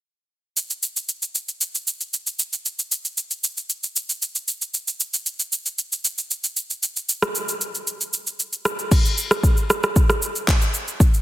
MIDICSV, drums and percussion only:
0, 0, Header, 1, 2, 480
1, 0, Start_track
1, 0, Tempo, 521739
1, 522, Time_signature, 4, 2, 24, 8
1, 10321, End_track
2, 0, Start_track
2, 0, Title_t, "Drums"
2, 523, Note_on_c, 9, 82, 66
2, 615, Note_off_c, 9, 82, 0
2, 647, Note_on_c, 9, 82, 57
2, 739, Note_off_c, 9, 82, 0
2, 762, Note_on_c, 9, 82, 97
2, 854, Note_off_c, 9, 82, 0
2, 887, Note_on_c, 9, 82, 58
2, 979, Note_off_c, 9, 82, 0
2, 1001, Note_on_c, 9, 82, 72
2, 1093, Note_off_c, 9, 82, 0
2, 1126, Note_on_c, 9, 82, 56
2, 1218, Note_off_c, 9, 82, 0
2, 1242, Note_on_c, 9, 82, 78
2, 1334, Note_off_c, 9, 82, 0
2, 1367, Note_on_c, 9, 82, 45
2, 1459, Note_off_c, 9, 82, 0
2, 1482, Note_on_c, 9, 82, 75
2, 1574, Note_off_c, 9, 82, 0
2, 1609, Note_on_c, 9, 82, 53
2, 1701, Note_off_c, 9, 82, 0
2, 1724, Note_on_c, 9, 82, 85
2, 1816, Note_off_c, 9, 82, 0
2, 1847, Note_on_c, 9, 82, 49
2, 1939, Note_off_c, 9, 82, 0
2, 1965, Note_on_c, 9, 82, 72
2, 2057, Note_off_c, 9, 82, 0
2, 2085, Note_on_c, 9, 82, 52
2, 2177, Note_off_c, 9, 82, 0
2, 2202, Note_on_c, 9, 82, 88
2, 2294, Note_off_c, 9, 82, 0
2, 2328, Note_on_c, 9, 82, 49
2, 2420, Note_off_c, 9, 82, 0
2, 2443, Note_on_c, 9, 82, 67
2, 2535, Note_off_c, 9, 82, 0
2, 2568, Note_on_c, 9, 82, 57
2, 2660, Note_off_c, 9, 82, 0
2, 2683, Note_on_c, 9, 82, 96
2, 2775, Note_off_c, 9, 82, 0
2, 2807, Note_on_c, 9, 82, 58
2, 2899, Note_off_c, 9, 82, 0
2, 2921, Note_on_c, 9, 82, 69
2, 3013, Note_off_c, 9, 82, 0
2, 3044, Note_on_c, 9, 82, 57
2, 3136, Note_off_c, 9, 82, 0
2, 3163, Note_on_c, 9, 82, 83
2, 3255, Note_off_c, 9, 82, 0
2, 3287, Note_on_c, 9, 82, 46
2, 3379, Note_off_c, 9, 82, 0
2, 3402, Note_on_c, 9, 82, 75
2, 3494, Note_off_c, 9, 82, 0
2, 3528, Note_on_c, 9, 82, 55
2, 3620, Note_off_c, 9, 82, 0
2, 3643, Note_on_c, 9, 82, 88
2, 3735, Note_off_c, 9, 82, 0
2, 3767, Note_on_c, 9, 82, 51
2, 3859, Note_off_c, 9, 82, 0
2, 3884, Note_on_c, 9, 82, 71
2, 3976, Note_off_c, 9, 82, 0
2, 4005, Note_on_c, 9, 82, 55
2, 4097, Note_off_c, 9, 82, 0
2, 4121, Note_on_c, 9, 82, 85
2, 4213, Note_off_c, 9, 82, 0
2, 4247, Note_on_c, 9, 82, 50
2, 4339, Note_off_c, 9, 82, 0
2, 4362, Note_on_c, 9, 82, 69
2, 4454, Note_off_c, 9, 82, 0
2, 4487, Note_on_c, 9, 82, 59
2, 4579, Note_off_c, 9, 82, 0
2, 4602, Note_on_c, 9, 82, 94
2, 4694, Note_off_c, 9, 82, 0
2, 4727, Note_on_c, 9, 82, 58
2, 4819, Note_off_c, 9, 82, 0
2, 4841, Note_on_c, 9, 82, 68
2, 4933, Note_off_c, 9, 82, 0
2, 4965, Note_on_c, 9, 82, 58
2, 5057, Note_off_c, 9, 82, 0
2, 5082, Note_on_c, 9, 82, 86
2, 5174, Note_off_c, 9, 82, 0
2, 5206, Note_on_c, 9, 82, 46
2, 5298, Note_off_c, 9, 82, 0
2, 5323, Note_on_c, 9, 82, 77
2, 5415, Note_off_c, 9, 82, 0
2, 5450, Note_on_c, 9, 82, 56
2, 5542, Note_off_c, 9, 82, 0
2, 5563, Note_on_c, 9, 82, 83
2, 5655, Note_off_c, 9, 82, 0
2, 5687, Note_on_c, 9, 82, 51
2, 5779, Note_off_c, 9, 82, 0
2, 5804, Note_on_c, 9, 82, 76
2, 5896, Note_off_c, 9, 82, 0
2, 5924, Note_on_c, 9, 82, 53
2, 6016, Note_off_c, 9, 82, 0
2, 6041, Note_on_c, 9, 82, 87
2, 6133, Note_off_c, 9, 82, 0
2, 6167, Note_on_c, 9, 82, 51
2, 6259, Note_off_c, 9, 82, 0
2, 6283, Note_on_c, 9, 82, 68
2, 6375, Note_off_c, 9, 82, 0
2, 6408, Note_on_c, 9, 82, 57
2, 6500, Note_off_c, 9, 82, 0
2, 6524, Note_on_c, 9, 82, 95
2, 6616, Note_off_c, 9, 82, 0
2, 6647, Note_on_c, 9, 37, 88
2, 6648, Note_on_c, 9, 82, 59
2, 6739, Note_off_c, 9, 37, 0
2, 6740, Note_off_c, 9, 82, 0
2, 6763, Note_on_c, 9, 82, 69
2, 6855, Note_off_c, 9, 82, 0
2, 6887, Note_on_c, 9, 82, 59
2, 6979, Note_off_c, 9, 82, 0
2, 7003, Note_on_c, 9, 82, 84
2, 7095, Note_off_c, 9, 82, 0
2, 7127, Note_on_c, 9, 82, 47
2, 7219, Note_off_c, 9, 82, 0
2, 7243, Note_on_c, 9, 82, 79
2, 7335, Note_off_c, 9, 82, 0
2, 7369, Note_on_c, 9, 82, 54
2, 7461, Note_off_c, 9, 82, 0
2, 7482, Note_on_c, 9, 82, 85
2, 7574, Note_off_c, 9, 82, 0
2, 7607, Note_on_c, 9, 82, 49
2, 7699, Note_off_c, 9, 82, 0
2, 7724, Note_on_c, 9, 82, 73
2, 7816, Note_off_c, 9, 82, 0
2, 7846, Note_on_c, 9, 82, 53
2, 7938, Note_off_c, 9, 82, 0
2, 7961, Note_on_c, 9, 37, 88
2, 7962, Note_on_c, 9, 82, 86
2, 8053, Note_off_c, 9, 37, 0
2, 8054, Note_off_c, 9, 82, 0
2, 8087, Note_on_c, 9, 82, 48
2, 8179, Note_off_c, 9, 82, 0
2, 8201, Note_on_c, 9, 36, 119
2, 8202, Note_on_c, 9, 49, 94
2, 8202, Note_on_c, 9, 82, 71
2, 8293, Note_off_c, 9, 36, 0
2, 8294, Note_off_c, 9, 49, 0
2, 8294, Note_off_c, 9, 82, 0
2, 8328, Note_on_c, 9, 82, 59
2, 8420, Note_off_c, 9, 82, 0
2, 8443, Note_on_c, 9, 82, 96
2, 8535, Note_off_c, 9, 82, 0
2, 8565, Note_on_c, 9, 37, 90
2, 8566, Note_on_c, 9, 82, 58
2, 8657, Note_off_c, 9, 37, 0
2, 8658, Note_off_c, 9, 82, 0
2, 8679, Note_on_c, 9, 36, 88
2, 8683, Note_on_c, 9, 82, 72
2, 8771, Note_off_c, 9, 36, 0
2, 8775, Note_off_c, 9, 82, 0
2, 8806, Note_on_c, 9, 82, 58
2, 8898, Note_off_c, 9, 82, 0
2, 8925, Note_on_c, 9, 37, 92
2, 8925, Note_on_c, 9, 82, 85
2, 9017, Note_off_c, 9, 37, 0
2, 9017, Note_off_c, 9, 82, 0
2, 9047, Note_on_c, 9, 82, 49
2, 9050, Note_on_c, 9, 37, 83
2, 9139, Note_off_c, 9, 82, 0
2, 9142, Note_off_c, 9, 37, 0
2, 9163, Note_on_c, 9, 82, 76
2, 9164, Note_on_c, 9, 36, 107
2, 9255, Note_off_c, 9, 82, 0
2, 9256, Note_off_c, 9, 36, 0
2, 9288, Note_on_c, 9, 37, 91
2, 9289, Note_on_c, 9, 82, 58
2, 9380, Note_off_c, 9, 37, 0
2, 9381, Note_off_c, 9, 82, 0
2, 9405, Note_on_c, 9, 82, 90
2, 9497, Note_off_c, 9, 82, 0
2, 9527, Note_on_c, 9, 82, 52
2, 9619, Note_off_c, 9, 82, 0
2, 9643, Note_on_c, 9, 82, 77
2, 9644, Note_on_c, 9, 36, 99
2, 9644, Note_on_c, 9, 39, 96
2, 9735, Note_off_c, 9, 82, 0
2, 9736, Note_off_c, 9, 36, 0
2, 9736, Note_off_c, 9, 39, 0
2, 9765, Note_on_c, 9, 82, 57
2, 9857, Note_off_c, 9, 82, 0
2, 9882, Note_on_c, 9, 82, 94
2, 9974, Note_off_c, 9, 82, 0
2, 10008, Note_on_c, 9, 82, 51
2, 10100, Note_off_c, 9, 82, 0
2, 10122, Note_on_c, 9, 36, 123
2, 10123, Note_on_c, 9, 82, 73
2, 10214, Note_off_c, 9, 36, 0
2, 10215, Note_off_c, 9, 82, 0
2, 10249, Note_on_c, 9, 82, 58
2, 10321, Note_off_c, 9, 82, 0
2, 10321, End_track
0, 0, End_of_file